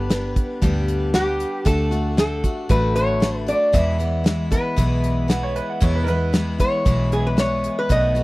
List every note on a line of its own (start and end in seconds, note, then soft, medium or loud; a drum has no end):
0.00 0.40 G1 medium
0.00 0.10 D4 medium
0.00 1.11 B4 medium
0.10 0.61 G3 soft
0.10 0.62 B3 soft
0.10 0.63 D4 medium
0.10 0.63 G4 medium
0.10 snare medium
0.10 closed hi-hat medium
0.36 kick medium
0.36 closed hi-hat medium
0.62 1.44 D2 medium
0.62 1.14 G2 medium
0.62 1.14 D3 medium
0.62 1.12 G3 medium
0.62 1.13 B3 medium
0.62 1.15 D4 medium
0.62 1.15 G4 medium
0.62 kick medium
0.62 closed hi-hat medium
0.88 closed hi-hat medium
1.13 1.65 G3 medium
1.13 1.65 B3 medium
1.13 1.65 D4 medium
1.13 1.68 G4 medium
1.13 1.67 G4 medium
1.13 snare loud
1.13 closed hi-hat medium
1.40 closed hi-hat medium
1.65 2.47 D2 medium
1.65 1.92 D3 medium
1.65 1.92 A3 medium
1.65 1.91 D4 medium
1.65 1.90 F#4 medium
1.65 2.18 A4 medium
1.65 kick loud
1.65 closed hi-hat medium
1.91 2.17 A3 soft
1.91 2.18 D4 soft
1.91 2.18 F#4 medium
1.91 closed hi-hat medium
2.17 2.44 D3 medium
2.17 2.44 A3 medium
2.17 2.44 D4 medium
2.17 2.42 F#4 medium
2.17 2.67 A4 medium
2.17 snare loud
2.17 closed hi-hat medium
2.43 2.69 A3 soft
2.43 2.70 D4 soft
2.43 2.70 F#4 soft
2.43 kick medium
2.43 closed hi-hat medium
2.69 3.51 A1 medium
2.69 3.19 D3 medium
2.69 3.20 A3 medium
2.69 3.21 D4 medium
2.69 3.22 F#4 medium
2.69 2.95 B4 medium
2.69 kick loud
2.69 closed hi-hat medium
2.96 3.48 C#5 medium
2.96 closed hi-hat medium
3.20 3.47 D3 soft
3.20 3.48 A3 medium
3.20 3.47 D4 medium
3.20 3.45 F#4 medium
3.20 snare loud
3.20 closed hi-hat medium
3.46 3.73 A3 soft
3.46 3.74 D4 soft
3.46 3.73 F#4 soft
3.46 3.74 D5 medium
3.46 closed hi-hat medium
3.72 3.99 E2 medium
3.72 4.55 E2 medium
3.72 4.00 B2 medium
3.72 4.00 E3 medium
3.72 3.99 G#3 medium
3.72 3.98 B3 medium
3.72 3.97 E4 medium
3.72 4.54 E5 medium
3.72 kick loud
3.72 closed hi-hat medium
3.98 4.23 E3 soft
3.98 4.24 G#3 soft
3.98 4.25 B3 medium
3.98 4.25 E4 soft
3.98 closed hi-hat medium
4.24 4.51 E3 medium
4.24 4.52 G#3 medium
4.24 4.51 B3 soft
4.24 4.49 E4 medium
4.24 snare loud
4.24 closed hi-hat medium
4.51 4.76 E3 soft
4.51 4.77 G#3 soft
4.51 4.77 B3 soft
4.51 4.77 E4 soft
4.51 5.26 B4 medium
4.51 kick medium
4.51 closed hi-hat medium
4.76 5.59 B1 medium
4.76 5.29 E2 medium
4.76 5.29 B2 medium
4.76 5.27 E3 medium
4.76 5.28 G#3 medium
4.76 5.29 B3 medium
4.76 5.30 E4 medium
4.76 kick loud
4.76 closed hi-hat medium
5.04 closed hi-hat medium
5.28 5.80 E3 medium
5.28 5.81 G#3 medium
5.28 5.82 B3 medium
5.28 5.81 E4 medium
5.28 5.42 F#5 medium
5.28 snare medium
5.28 closed hi-hat medium
5.43 5.55 C#5 medium
5.56 5.68 B4 medium
5.56 closed hi-hat medium
5.70 5.81 F#5 medium
5.80 6.07 E2 medium
5.80 6.63 E2 medium
5.80 6.08 B2 medium
5.80 6.08 E3 medium
5.80 6.07 G#3 loud
5.80 6.07 B3 medium
5.80 6.05 E4 loud
5.80 5.94 C#5 medium
5.80 kick loud
5.80 closed hi-hat medium
5.95 6.07 B4 medium
6.04 6.34 B3 medium
6.04 6.33 E4 medium
6.04 6.07 A#4 medium
6.08 6.32 E3 soft
6.08 6.33 G#3 medium
6.08 6.46 B4 medium
6.08 closed hi-hat medium
6.33 6.59 E3 medium
6.33 6.59 G#3 medium
6.33 6.58 B3 medium
6.33 6.57 E4 medium
6.33 snare loud
6.33 closed hi-hat medium
6.58 6.85 E3 soft
6.58 6.86 G#3 soft
6.58 6.86 B3 soft
6.58 6.85 E4 soft
6.58 7.13 C#5 medium
6.58 kick medium
6.58 closed hi-hat medium
6.85 7.67 B1 medium
6.85 7.37 E2 medium
6.85 7.38 B2 medium
6.85 7.36 E3 medium
6.85 7.37 G#3 medium
6.85 7.39 B3 medium
6.85 7.39 E4 medium
6.85 kick loud
6.85 closed hi-hat medium
7.12 7.26 G#4 medium
7.12 closed hi-hat medium
7.27 7.39 B4 medium
7.37 7.89 E3 medium
7.37 7.90 G#3 medium
7.37 7.91 B3 medium
7.37 7.91 E4 medium
7.37 7.79 C#5 medium
7.37 snare loud
7.37 closed hi-hat medium
7.64 closed hi-hat medium
7.79 7.91 B4 medium
7.89 8.23 B1 medium
7.89 8.15 B2 medium
7.89 8.16 D#3 medium
7.89 8.16 A3 medium
7.89 8.15 B3 medium
7.89 8.14 F#4 medium
7.89 8.23 D#5 medium
7.89 kick loud
7.89 closed hi-hat medium
8.15 8.23 A3 soft
8.15 8.23 B3 medium
8.15 8.23 F#4 medium
8.15 closed hi-hat medium